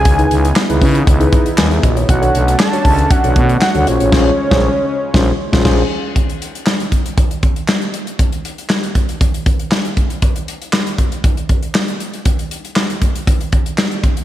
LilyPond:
<<
  \new Staff \with { instrumentName = "Analog synth lead" } { \time 4/4 \key bes \minor \tempo 4 = 118 aes''4 r2. | fis''4 a''4 fis''4 fis''8 des''8~ | des''2. r4 | r1 |
r1 | r1 | r1 | }
  \new Staff \with { instrumentName = "Tine electric piano" } { \time 4/4 \key bes \minor r16 <ees' fes' aes' ces''>8 r8 <ees' fes' aes' ces''>8 r8 <ees' fes' aes' ces''>8 r16 <ces'' aes''>16 <aes' fes''>16 <ges' ees''>16 <fes' des''>16~ | <fes' des''>16 <d' fis' a' cis''>8 r8 <d' fis' a' cis''>8 r8 <d' fis' a' cis''>8 r8 <d' fis' a' cis''>16 <des' f' aes' c''>8 | <des' f' aes' c''>8 r16 <des' f' aes' c''>8 r8. <des' f' aes' c''>8 r16 <des' f' aes' c''>16 <des' f' aes' c''>8 r8 | r1 |
r1 | r1 | r1 | }
  \new Staff \with { instrumentName = "Analog synth pad" } { \time 4/4 \key bes \minor <ces' ees' fes'>1 | <a cis' d'>2.~ <a cis' d'>8 <des aes des'>8~ | <des aes des'>1 | r1 |
r1 | r1 | r1 | }
  \new Staff \with { instrumentName = "FM bass" } { \clef bass \time 4/4 \key bes \minor des,8 des,8 r16 des,16 des8 des,8 r8 ees,8 bes,,8 | b,,8 b,,8 r8 cis,8 r16 b,,16 b,8 r16 d,16 bes,,16 a,,16 | bes,,8 r16 bes,,8 r8. bes,,8 r16 bes,,16 bes,,8 r8 | r1 |
r1 | r1 | r1 | }
  \new DrumStaff \with { instrumentName = "Drums" } \drummode { \time 4/4 <hh bd>16 hh16 hh16 hh16 <hc sn>16 hh16 <hho bd>16 hh16 <hh bd>16 hh16 <hh bd>16 hh16 <hc sn>16 hh16 <hh bd>16 hh16 | <hh bd>16 hh16 hh16 hh16 <hc sn>16 hh16 <hho bd>16 hh16 <hh bd>16 hh16 <hh bd>16 hh16 <hc sn>16 hh16 hh16 hh16 | <cymc bd sn>8. <bd sn>16 r4 <bd sn>8. <bd sn>16 <cymc bd sn>4 | <hh bd>16 hh16 hh16 hh16 <hc sn>16 hh16 <hh bd>16 hh16 <hh bd>16 hh16 <hh bd>16 hh16 <hc sn>16 hh16 hh16 hh16 |
<hh bd>16 hh16 hh16 hh16 <hc sn>16 hh16 <hh bd>16 hh16 <hh bd>16 hh16 <hh bd>16 hh16 <hc sn>16 hh16 <hh bd>16 hh16 | <hh bd>16 hh16 hh16 hh16 <hc sn>16 hh16 <hh bd>16 hh16 <hh bd>16 hh16 <hh bd>16 hh16 <hc sn>16 hh16 hh16 hh16 | <hh bd>16 hh16 hh16 hh16 <hc sn>16 hh16 <hh bd>16 hh16 <hh bd>16 hh16 <hh bd>16 hh16 <hc sn>16 hh16 <hh bd>16 hh16 | }
>>